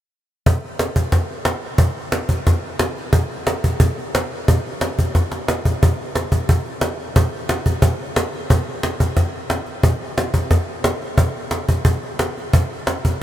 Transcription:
0.46 cajon bass medium
0.79 cajon slap medium
0.96 cajon bass medium
1.12 cajon bass medium
1.12 cajon slap soft
1.45 cajon slap medium
1.78 cajon bass medium
2.12 cajon slap medium
2.29 cajon bass medium
2.47 cajon bass medium
2.47 cajon slap soft
2.79 cajon slap medium
2.97 cajon slap soft
3.13 cajon bass medium
3.47 cajon slap medium
3.64 cajon bass medium
3.80 cajon bass medium
3.98 cajon slap soft
4.15 cajon slap medium
4.48 cajon bass medium
4.81 cajon slap medium
4.99 cajon bass medium
5.15 cajon bass medium
5.15 cajon slap soft
5.32 cajon slap medium
5.48 cajon slap medium
5.65 cajon bass medium
5.83 cajon bass medium
6.15 cajon slap medium
6.32 cajon bass medium
6.49 cajon bass medium
6.65 cajon slap soft
6.81 cajon slap medium
7.16 cajon bass medium
7.49 cajon slap medium
7.66 cajon bass medium
7.82 cajon bass medium
8.16 cajon slap medium
8.33 cajon slap soft
8.50 cajon bass medium
8.83 cajon slap medium
9.00 cajon bass medium
9.17 cajon bass medium
9.17 cajon slap soft
9.50 cajon slap medium
9.66 cajon slap soft
9.83 cajon bass medium
10.18 cajon slap medium
10.34 cajon bass medium
10.51 cajon bass medium
10.51 cajon slap soft
10.84 cajon slap medium
11.02 cajon slap soft
11.18 cajon bass medium
11.51 cajon slap medium
11.69 cajon bass medium
11.85 cajon bass medium
12.03 cajon slap soft
12.19 cajon slap medium
12.37 cajon slap soft
12.53 cajon bass medium
12.87 cajon slap medium
13.05 cajon bass medium

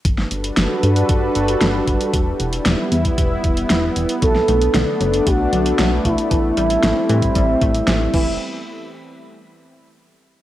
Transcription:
0.05 0.25 G1 loud
0.05 4.19 G3 medium
0.05 2.12 D4 medium
0.05 2.12 F#4 medium
0.05 2.12 A4 medium
0.05 2.12 B4 medium
0.05 kick loud
0.05 closed hi-hat medium
0.18 snare soft
0.31 0.51 G1 medium
0.31 closed hi-hat medium
0.44 closed hi-hat medium
0.57 0.67 G1 medium
0.57 snare loud
0.57 closed hi-hat medium
0.83 1.04 G2 loud
0.83 closed hi-hat medium
0.96 closed hi-hat medium
1.09 1.30 G1 medium
1.09 kick loud
1.09 closed hi-hat medium
1.35 1.56 G1 loud
1.35 closed hi-hat medium
1.48 closed hi-hat medium
1.61 1.82 G1 medium
1.61 snare loud
1.61 closed hi-hat medium
1.87 1.98 G1 medium
1.87 kick medium
1.87 closed hi-hat medium
2.01 closed hi-hat medium
2.13 2.34 E1 loud
2.13 6.27 B3 medium
2.13 4.20 E4 medium
2.13 kick loud
2.13 closed hi-hat medium
2.40 2.60 E1 medium
2.40 closed hi-hat medium
2.53 closed hi-hat medium
2.66 2.76 E1 medium
2.66 snare loud
2.66 closed hi-hat medium
2.92 3.12 E2 loud
2.92 closed hi-hat medium
3.05 kick medium
3.05 closed hi-hat medium
3.18 3.38 E1 medium
3.18 kick loud
3.18 closed hi-hat loud
3.44 3.64 E1 loud
3.44 kick loud
3.44 closed hi-hat medium
3.57 closed hi-hat medium
3.70 3.91 E1 medium
3.70 snare loud
3.70 closed hi-hat loud
3.96 4.06 E1 medium
3.96 closed hi-hat medium
4.09 closed hi-hat medium
4.22 4.43 B1 loud
4.22 4.42 F#3 medium
4.22 8.10 A3 medium
4.22 6.29 D4 medium
4.22 5.28 A4 loud
4.22 kick loud
4.22 closed hi-hat medium
4.35 snare soft
4.48 4.69 B1 medium
4.48 4.73 A3 medium
4.48 closed hi-hat medium
4.62 closed hi-hat medium
4.74 4.85 B1 medium
4.74 4.99 D3 medium
4.74 snare loud
4.74 closed hi-hat medium
5.01 5.21 F#1 loud
5.01 5.26 F#3 medium
5.01 closed hi-hat medium
5.14 closed hi-hat medium
5.27 5.47 B1 medium
5.27 5.47 A3 medium
5.27 5.95 F#4 loud
5.27 kick loud
5.27 closed hi-hat loud
5.53 5.73 B1 loud
5.53 5.78 D3 medium
5.53 closed hi-hat medium
5.66 closed hi-hat medium
5.79 5.99 B1 medium
5.79 5.91 F#3 loud
5.79 snare loud
5.79 closed hi-hat medium
6.05 6.15 B1 medium
6.05 6.25 A3 medium
6.05 8.13 E4 loud
6.05 kick medium
6.05 closed hi-hat medium
6.18 closed hi-hat medium
6.31 6.51 A1 loud
6.31 6.51 E3 medium
6.31 8.12 G3 medium
6.31 8.12 C4 medium
6.31 kick loud
6.31 closed hi-hat medium
6.57 6.78 A1 loud
6.57 6.77 G3 loud
6.57 closed hi-hat medium
6.70 closed hi-hat medium
6.83 6.93 A1 medium
6.83 7.03 A3 medium
6.83 snare loud
6.83 closed hi-hat medium
7.09 7.30 A2 loud
7.09 7.21 E3 loud
7.09 closed hi-hat medium
7.22 kick medium
7.22 closed hi-hat medium
7.35 7.56 A1 medium
7.35 7.55 G3 medium
7.35 kick loud
7.35 closed hi-hat medium
7.61 7.82 A1 medium
7.61 7.86 A3 loud
7.61 kick loud
7.61 closed hi-hat medium
7.74 closed hi-hat medium
7.88 8.08 A1 loud
7.88 8.13 E3 medium
7.88 snare loud
7.88 closed hi-hat medium
8.14 8.38 E1 loud
8.14 8.38 E3 medium
8.14 8.33 E4 medium
8.14 kick loud
8.14 crash medium

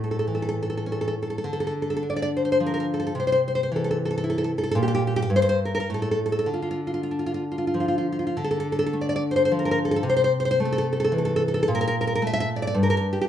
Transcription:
0.00 1.40 A2 soft
0.00 0.10 A4 soft
0.11 0.17 A4 soft
0.19 0.25 A4 soft
0.27 1.15 E3 soft
0.35 0.40 A4 soft
0.42 0.47 A4 soft
0.49 0.54 A4 medium
0.63 0.69 A4 soft
0.70 0.76 A4 soft
0.77 0.84 A4 soft
0.86 1.44 C#4 soft
0.92 0.98 A4 soft
1.01 1.06 A4 soft
1.08 1.14 A4 soft
1.23 1.29 A4 soft
1.30 1.36 A4 soft
1.38 1.44 A4 soft
1.44 3.09 D3 soft
1.53 1.58 A4 soft
1.60 1.65 A4 soft
1.67 1.72 A4 soft
1.82 1.87 A4 soft
1.90 1.95 A4 soft
1.97 2.02 A4 soft
2.03 2.85 D4 soft
2.10 2.15 D5 soft
2.16 2.21 D5 medium
2.22 2.29 D5 medium
2.37 2.43 C5 soft
2.45 2.50 C5 medium
2.52 2.57 C5 medium
2.60 3.14 F3 soft
2.66 2.71 A#4 soft
2.74 2.79 A#4 soft
2.80 2.85 A#4 medium
2.94 2.98 A4 soft
3.00 3.06 A4 soft
3.07 3.13 A4 medium
3.15 4.74 C3 soft
3.20 3.26 C5 soft
3.27 3.31 C5 medium
3.32 3.40 C5 medium
3.48 3.54 C5 soft
3.55 3.61 C5 medium
3.63 3.69 C5 medium
3.72 4.52 E3 soft
3.76 3.82 A4 soft
3.84 3.89 A4 medium
3.91 3.97 A4 medium
4.05 4.09 A4 medium
4.11 4.16 A4 medium
4.18 4.24 A4 medium
4.24 4.77 E4 soft
4.30 4.37 A4 soft
4.38 4.43 A4 medium
4.44 4.50 A4 medium
4.58 4.62 A4 soft
4.63 4.70 A4 medium
4.71 5.28 A#2 medium
4.71 4.77 A4 medium
4.83 4.87 G4 medium
4.88 4.93 G4 medium
4.95 5.02 G4 medium
5.07 5.15 G4 medium
5.16 5.21 G4 medium
5.22 5.30 G4 medium
5.30 5.87 G2 medium
5.36 5.41 C5 medium
5.42 5.48 C5 medium
5.49 5.58 C5 medium
5.65 5.73 A#4 soft
5.75 5.79 A#4 medium
5.80 5.88 A#4 medium
5.90 6.48 A2 soft
5.94 6.01 A4 medium
6.02 6.10 A4 medium
6.11 6.19 A4 medium
6.26 6.31 A4 soft
6.32 6.38 A4 medium
6.39 6.48 A4 medium
6.46 8.31 D3 soft
6.54 6.61 F4 soft
6.62 6.70 F4 soft
6.71 6.80 F4 medium
6.87 6.93 F4 soft
6.94 7.02 F4 soft
7.03 7.12 F4 soft
7.11 8.06 D4 soft
7.19 7.25 F4 soft
7.26 7.33 F4 soft
7.34 7.43 F4 soft
7.52 7.57 F4 soft
7.58 7.66 F4 soft
7.67 7.75 F4 soft
7.74 8.37 F3 soft
7.80 7.87 F4 soft
7.88 7.97 F4 soft
7.98 8.06 F4 soft
8.12 8.18 F4 soft
8.19 8.26 F4 soft
8.27 8.36 F4 soft
8.37 10.00 D3 medium
8.44 8.50 A4 medium
8.51 8.58 A4 soft
8.60 8.67 A4 medium
8.72 8.78 A4 soft
8.79 8.85 A4 medium
8.86 8.94 A4 medium
8.93 9.77 A3 soft
9.01 9.08 D5 soft
9.09 9.15 D5 medium
9.16 9.23 D5 medium
9.31 9.35 C5 medium
9.36 9.43 C5 medium
9.45 9.51 C5 medium
9.52 10.05 F3 soft
9.59 9.64 A#4 soft
9.65 9.70 A#4 medium
9.71 9.78 A#4 medium
9.85 9.90 A4 medium
9.91 9.95 A4 medium
9.96 10.04 A4 medium
10.03 11.63 C3 medium
10.10 10.15 C5 medium
10.17 10.23 C5 medium
10.24 10.31 C5 medium
10.40 10.44 C5 medium
10.45 10.50 C5 medium
10.51 10.59 C5 medium
10.60 11.41 A3 soft
10.65 10.71 A4 soft
10.72 10.77 A4 medium
10.78 10.86 A4 medium
10.93 10.99 A4 soft
11.00 11.03 A4 medium
11.04 11.13 A4 medium
11.12 11.67 E3 soft
11.18 11.24 A4 medium
11.25 11.33 A4 medium
11.36 11.42 A4 medium
11.48 11.53 A4 medium
11.54 11.61 A4 medium
11.63 11.69 A4 medium
11.68 12.74 A#2 medium
11.75 11.80 A#4 medium
11.81 11.86 A#4 medium
11.88 11.95 A#4 medium
12.01 12.06 A#4 medium
12.07 12.14 A#4 medium
12.15 12.22 A#4 medium
12.22 12.78 A3 soft
12.27 12.32 E5 medium
12.33 12.39 E5 medium
12.40 12.49 E5 medium
12.56 12.61 D5 soft
12.62 12.66 D5 medium
12.67 12.76 D5 medium
12.74 13.29 G2 medium
12.83 12.89 A#4 medium
12.90 12.96 A#4 medium
13.13 13.20 G4 soft
13.21 13.26 G4 medium

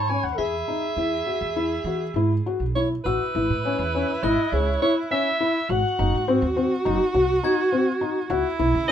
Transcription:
0.00 0.14 G#2 medium
0.00 0.40 C#5 loud
0.00 0.11 A5 medium
0.00 0.64 B5 medium
0.09 0.24 C#4 medium
0.09 0.25 G#5 medium
0.24 0.35 D#2 medium
0.24 0.37 F#5 medium
0.38 0.61 E2 medium
0.38 2.75 G#4 medium
0.38 0.54 G#4 medium
0.38 2.41 E5 medium
0.68 0.83 D#4 medium
0.96 1.20 E2 medium
0.96 1.13 E4 medium
1.27 1.42 F#4 medium
1.41 1.77 E2 medium
1.56 1.72 E4 medium
1.84 2.09 E3 medium
1.84 2.02 F#4 medium
2.14 2.38 G#2 medium
2.14 2.31 E4 medium
2.46 2.62 F#4 medium
2.60 2.96 B1 medium
2.75 2.91 E4 medium
2.75 2.89 C#5 medium
3.04 3.17 A1 medium
3.04 5.72 E4 medium
3.04 3.21 F#4 medium
3.04 4.25 B4 medium
3.04 4.16 E6 medium
3.35 3.47 G#1 medium
3.35 3.51 E4 medium
3.50 3.73 A2 medium
3.65 3.80 C#4 medium
3.79 4.02 E2 loud
3.95 4.10 C#4 medium
4.23 4.35 G#1 medium
4.23 4.39 E4 medium
4.23 4.54 D#5 medium
4.23 5.33 F#6 medium
4.52 4.76 C#2 medium
4.52 4.68 G#4 medium
4.52 4.82 C#5 medium
4.82 4.97 E4 medium
4.82 4.95 C#5 loud
5.11 5.26 C#4 medium
5.11 5.71 E5 loud
5.41 5.56 E4 medium
5.69 5.81 G#1 loud
5.69 5.85 F#4 medium
5.69 8.32 F#4 loud
5.69 6.35 F#5 loud
5.99 6.10 F#1 loud
5.99 6.14 D#4 medium
6.14 6.37 G#2 medium
6.28 6.43 C4 medium
6.42 6.65 D#2 loud
6.57 6.72 C4 medium
6.85 6.97 F#1 loud
6.85 7.00 D#4 medium
7.14 7.37 C2 medium
7.14 7.30 F#4 medium
7.43 7.59 D#4 medium
7.43 8.53 G#6 medium
7.72 7.88 C4 medium
8.01 8.16 D#4 medium
8.30 8.42 C#2 loud
8.30 8.92 E4 loud
8.30 8.46 F#4 loud
8.59 8.71 B1 loud
8.59 8.75 E4 medium
8.74 8.92 C#3 medium
8.88 8.92 C#4 medium
8.88 8.92 D#5 loud

